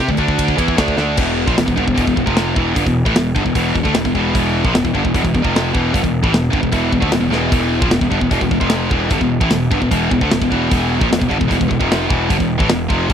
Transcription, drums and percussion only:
0.09 kick
0.17 kick, ride
0.28 kick
0.39 kick, ride
0.48 kick
0.58 kick, ride
0.68 kick
0.78 kick, snare, ride
0.88 kick
0.97 snare
1.17 kick, crash
1.48 kick
1.58 snare, open hi-hat
1.68 kick
1.78 kick
1.88 kick
1.98 kick, open hi-hat
2.07 kick
2.17 kick
2.27 kick
2.37 snare, open hi-hat
2.56 kick
2.76 kick, open hi-hat
2.86 kick
3.06 kick
3.16 snare, open hi-hat
3.36 kick
3.46 kick
3.55 kick, open hi-hat
3.75 kick
3.85 kick
3.95 snare, open hi-hat
4.05 kick
4.15 kick
4.35 kick, open hi-hat
4.65 kick
4.75 snare, open hi-hat
4.85 kick
4.95 kick
5.05 kick
5.14 kick, open hi-hat
5.25 kick
5.35 kick
5.45 kick
5.56 snare, open hi-hat
5.75 kick
5.94 kick, open hi-hat
6.04 kick
6.24 kick
6.34 snare, open hi-hat
6.53 kick
6.63 kick
6.72 kick, open hi-hat
6.92 kick
7.02 kick
7.12 snare, open hi-hat
7.32 snare
7.52 kick, open hi-hat
7.82 kick
7.91 snare, open hi-hat
8.01 kick
8.12 kick
8.21 kick
8.31 kick, open hi-hat
8.41 kick
8.51 kick
8.61 kick
8.70 snare, open hi-hat
8.91 kick
9.10 kick, open hi-hat
9.21 kick
9.41 kick
9.51 snare, open hi-hat
9.71 kick
9.82 kick
9.91 kick, open hi-hat
10.11 kick
10.21 kick
10.31 snare, open hi-hat
10.42 kick
10.52 kick
10.71 kick, open hi-hat
11.01 kick
11.13 snare, open hi-hat
11.22 kick
11.31 kick
11.41 kick
11.51 kick, open hi-hat
11.61 kick
11.71 kick
11.81 kick
11.92 snare, open hi-hat
12.10 kick
12.30 kick, open hi-hat
12.40 kick
12.60 kick
12.70 snare, open hi-hat
12.90 kick
13.10 kick

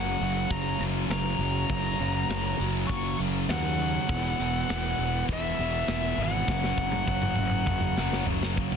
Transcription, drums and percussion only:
0.21 open hi-hat
0.51 kick, open hi-hat
0.81 open hi-hat
1.10 snare, open hi-hat
1.41 open hi-hat
1.70 kick, open hi-hat
2.00 open hi-hat
2.29 snare, open hi-hat
2.61 open hi-hat
2.89 kick, open hi-hat
3.20 open hi-hat
3.49 snare, open hi-hat
3.80 open hi-hat
4.09 kick, open hi-hat
4.40 open hi-hat
4.69 snare, open hi-hat
4.99 open hi-hat
5.28 kick, open hi-hat
5.58 open hi-hat
5.87 snare, open hi-hat
6.17 open hi-hat
6.48 kick, snare
6.64 snare
6.78 kick
6.92 high tom
7.07 kick
7.22 mid tom
7.36 mid tom
7.51 mid tom
7.66 kick, mid tom
7.81 mid tom
7.98 snare
8.13 snare
8.26 floor tom
8.43 snare
8.57 kick
8.72 floor tom

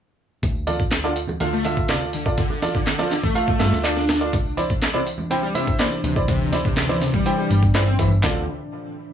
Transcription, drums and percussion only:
0.43 kick, closed hi-hat, tambourine, high bongo, high conga
0.55 tambourine
0.67 closed hi-hat, tambourine, high bongo, low conga
0.80 kick, tambourine, high conga
0.91 snare, clap, closed hi-hat, tambourine
1.04 tambourine, high bongo
1.16 closed hi-hat, tambourine
1.28 tambourine, high bongo, high conga, low conga
1.40 closed hi-hat, tambourine
1.53 tambourine
1.65 closed hi-hat, tambourine, high bongo, high conga
1.77 kick, tambourine
1.89 snare, clap, closed hi-hat, tambourine, high bongo
2.01 closed hi-hat, tambourine
2.13 closed hi-hat, tambourine
2.26 kick, tambourine, high bongo
2.38 kick, closed hi-hat, tambourine, high conga
2.50 tambourine, high bongo
2.62 snare, closed hi-hat, tambourine, low conga
2.74 kick, tambourine, high conga
2.87 snare, clap, closed hi-hat, tambourine, high bongo
2.99 snare, tambourine
3.11 snare, closed hi-hat, tambourine, high bongo
3.23 kick, tambourine, high conga, low conga
3.36 closed hi-hat, tambourine
3.48 kick, tambourine, high bongo
3.60 snare, closed hi-hat, tambourine, high conga
3.72 snare, tambourine, high bongo
3.85 clap, closed hi-hat, tambourine
3.97 snare, tambourine
4.09 snare, closed hi-hat, tambourine, high bongo
4.21 closed hi-hat, tambourine
4.33 kick, closed hi-hat, tambourine, high bongo, high conga
4.46 tambourine
4.57 closed hi-hat, tambourine, low conga
4.70 kick, tambourine, high bongo, high conga
4.82 snare, clap, closed hi-hat, tambourine
4.94 tambourine, high bongo
5.07 closed hi-hat, tambourine
5.18 tambourine, high conga, low conga
5.30 closed hi-hat, tambourine, high bongo
5.43 tambourine
5.55 closed hi-hat, tambourine, high bongo, high conga
5.67 kick, tambourine
5.79 snare, clap, closed hi-hat, tambourine
5.92 closed hi-hat, tambourine, high bongo
6.04 closed hi-hat, tambourine
6.16 kick, tambourine, high bongo
6.28 kick, closed hi-hat, tambourine, high conga
6.41 tambourine
6.52 snare, closed hi-hat, tambourine, high bongo, low conga
6.65 kick, tambourine, high conga
6.76 snare, clap, closed hi-hat, tambourine, high bongo
6.89 snare, tambourine
7.01 snare, closed hi-hat, tambourine
7.13 kick, tambourine, high bongo, high conga, low conga
7.26 closed hi-hat, tambourine
7.38 tambourine, high bongo
7.50 closed hi-hat, tambourine, high conga
7.63 kick, tambourine
7.74 snare, clap, closed hi-hat, tambourine, high bongo
7.87 closed hi-hat, tambourine
7.99 kick, closed hi-hat, tambourine, high bongo, low conga
8.12 tambourine
8.23 kick, snare, clap

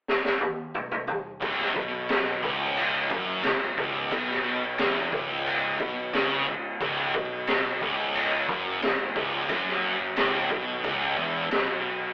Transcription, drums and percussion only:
0.08 snare
0.25 snare
0.41 high tom
0.74 mid tom
0.91 mid tom
1.07 floor tom
1.42 kick, crash
1.60 snare
1.76 kick
2.09 snare, crash
2.43 kick
2.77 crash
3.11 kick
3.43 snare, crash
3.78 kick
4.12 kick, crash
4.30 snare
4.78 snare, crash
5.12 kick
5.46 crash
5.80 kick
6.13 snare, crash
6.81 kick, crash
7.14 kick
7.47 snare, crash
7.81 kick
8.15 crash
8.49 kick
8.82 snare, crash
9.16 kick
9.49 kick, crash
9.68 snare
10.16 snare, crash
10.50 kick
10.84 kick, crash
11.51 snare, crash

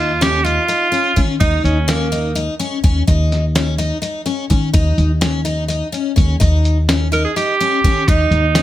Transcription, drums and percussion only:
0.22 snare, closed hi-hat
0.46 closed hi-hat
0.69 closed hi-hat
0.94 closed hi-hat
1.17 kick, closed hi-hat
1.41 kick, closed hi-hat
1.65 closed hi-hat
1.89 snare, closed hi-hat
2.13 closed hi-hat
2.36 closed hi-hat
2.61 closed hi-hat
2.84 kick, closed hi-hat
3.08 kick, closed hi-hat
3.32 snare, closed hi-hat
3.56 snare, closed hi-hat
3.79 closed hi-hat
4.03 closed hi-hat
4.26 closed hi-hat
4.51 kick, closed hi-hat
4.74 kick, closed hi-hat
4.98 closed hi-hat
5.22 snare, closed hi-hat
5.46 closed hi-hat
5.70 closed hi-hat
5.94 closed hi-hat
6.17 kick, closed hi-hat
6.41 kick, closed hi-hat
6.65 closed hi-hat
6.89 snare, closed hi-hat
7.13 closed hi-hat
7.37 closed hi-hat
7.61 closed hi-hat
7.84 kick, snare, closed hi-hat
8.08 kick, closed hi-hat
8.32 closed hi-hat
8.55 snare, closed hi-hat

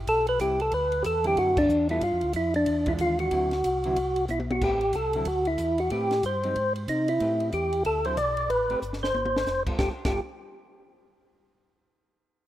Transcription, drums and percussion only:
0.07 kick, ride
0.27 ride
0.39 kick, hi-hat pedal, ride
0.60 ride
0.72 kick, ride
0.92 ride
1.04 kick, hi-hat pedal, ride
1.24 ride
1.37 kick, ride
1.57 kick, crash
1.69 hi-hat pedal
1.89 ride
2.01 kick, ride
2.21 ride
2.33 kick, hi-hat pedal, ride
2.54 ride
2.66 kick, ride
2.86 kick, ride
2.98 kick, hi-hat pedal, ride
3.19 ride
3.31 kick, ride
3.51 snare, ride
3.64 kick, hi-hat pedal, ride
3.84 ride
3.96 kick, ride
4.16 ride
4.28 hi-hat pedal, high tom
4.40 high tom
4.51 high tom
4.62 kick, crash
4.81 ride
4.93 kick, hi-hat pedal, ride
5.13 ride
5.25 kick, ride
5.45 ride
5.58 kick, hi-hat pedal, ride
5.78 ride
5.90 kick, ride
6.11 snare, ride
6.23 kick, hi-hat pedal, ride
6.43 ride
6.56 kick, ride
6.76 ride
6.88 kick, hi-hat pedal, ride
7.08 ride
7.20 kick, ride
7.40 ride
7.52 kick, hi-hat pedal, ride
7.73 ride
7.85 kick, ride
8.05 ride
8.17 kick, hi-hat pedal, ride
8.37 ride
8.50 kick, ride
8.70 ride
8.82 hi-hat pedal
8.93 snare
9.04 snare
9.15 high tom
9.25 high tom
9.36 snare
9.46 snare, hi-hat pedal
9.67 kick, crash
9.79 kick, snare
10.05 kick, snare, crash

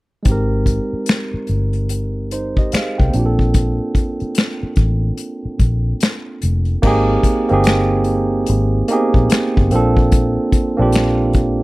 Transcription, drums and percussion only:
0.25 kick, closed hi-hat
0.66 kick, closed hi-hat
1.06 finger snap, snare, closed hi-hat
1.47 closed hi-hat
1.73 closed hi-hat
1.89 closed hi-hat
2.31 closed hi-hat
2.57 kick
2.72 finger snap, snare, closed hi-hat
3.00 kick
3.13 closed hi-hat
3.39 kick
3.54 kick, closed hi-hat
3.95 kick, closed hi-hat
4.20 closed hi-hat
4.35 finger snap, snare, closed hi-hat
4.76 kick, closed hi-hat
5.17 closed hi-hat
5.59 kick, closed hi-hat
6.00 finger snap, snare, closed hi-hat
6.42 closed hi-hat
6.65 closed hi-hat
6.83 kick, crash
7.23 kick, closed hi-hat
7.49 closed hi-hat
7.64 finger snap, snare, closed hi-hat
8.04 closed hi-hat
8.46 closed hi-hat
8.88 closed hi-hat
9.14 kick
9.30 finger snap, snare, closed hi-hat
9.57 kick
9.71 closed hi-hat
9.97 kick
10.12 kick, closed hi-hat
10.52 kick, closed hi-hat
10.92 finger snap, snare, closed hi-hat
11.33 kick, closed hi-hat

